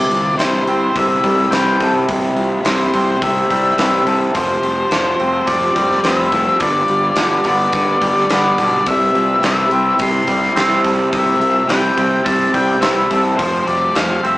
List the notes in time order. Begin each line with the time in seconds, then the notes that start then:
Already playing: C3 C4 E4 G4 D5
0.09 C2 E3 F4, open hi-hat
0.38 C2 C3 E4 C5, snare, open hi-hat
0.66 C2 G3 C4 G4, open hi-hat
0.95 C2 C3 C4 E5, kick, open hi-hat
1.24 C2 G3 C5, kick, open hi-hat
1.51 C2 E3 C4 B4 G5, snare, open hi-hat
1.80 C3 G3 A4, kick, open hi-hat
2.08 C2 C3, kick, open hi-hat
2.36 C2 E3 F4, open hi-hat
2.64 C2 C3 E3 E4 C5, snare, open hi-hat
2.92 C2 G3 C4 G4, kick, open hi-hat
3.22 C2 C3 C4 E5, kick, open hi-hat
3.50 C2 G3 C5, kick, open hi-hat
3.78 C2 E3 C4 B4 E5, snare, open hi-hat
4.06 C2 C3 G3 A4, kick, open hi-hat
4.34 F1 F3 F4 C5, kick, open hi-hat
4.62 F1 G3 G4, open hi-hat
4.91 F1 F3 F4, snare, open hi-hat
5.19 F1 G3 C4 G4, open hi-hat
5.47 F1 F3 C4 D5, kick, open hi-hat
5.76 F1 G3 C5, kick, open hi-hat
5.91 snare
6.03 F1 F3 C4 B4 E5, snare, open hi-hat
6.31 F3 G3 A4, kick, open hi-hat
6.60 G1 G2 G3 B4 D5, kick, open hi-hat
6.88 G1 D3 G4, open hi-hat
7.16 G1 D3 F4, snare, open hi-hat
7.44 G1 G3 B3 G4 D5, kick, open hi-hat
7.73 G1 D3 B3, kick, open hi-hat
8.01 G1 G3 C5, kick, open hi-hat
8.17 snare
8.29 G1 D3 B3 B4 D5, snare, open hi-hat
8.58 B1 D3 G3 A4, kick, open hi-hat
8.86 C2 C3 C4 E5, kick, open hi-hat
9.14 C2 G3 F4, open hi-hat
9.42 C2 C3 E4, snare, open hi-hat
9.46 E5
9.70 C2 G3 C4 G4, open hi-hat
9.99 C2 C3 C4 C6, kick, open hi-hat
10.27 C2 G3 C5, kick, open hi-hat
10.43 snare
10.55 C2 C3 C4 B4, snare, open hi-hat
10.83 C3 G3 A4, kick, open hi-hat
11.11 C2 C3 E5, kick, open hi-hat
11.40 C2 G3 F4, open hi-hat
11.68 C2 C3 E4 G5, snare, open hi-hat
11.96 C2 G3 C4 G4, kick, open hi-hat
12.24 C2 C3 C4 A5, kick, open hi-hat
12.52 C2 G3 C5 G5, kick, open hi-hat
12.80 C2 C3 C4 B4 E5, snare, open hi-hat
13.09 C2 C3 G3 A4, kick, open hi-hat
13.37 F1 F3 F4 G4 C5, kick, open hi-hat
13.66 F1 G3 G4 D5, open hi-hat
13.95 F1 F3 F4 F5, snare, open hi-hat
14.23 F1 G3 C4 G4 E5, open hi-hat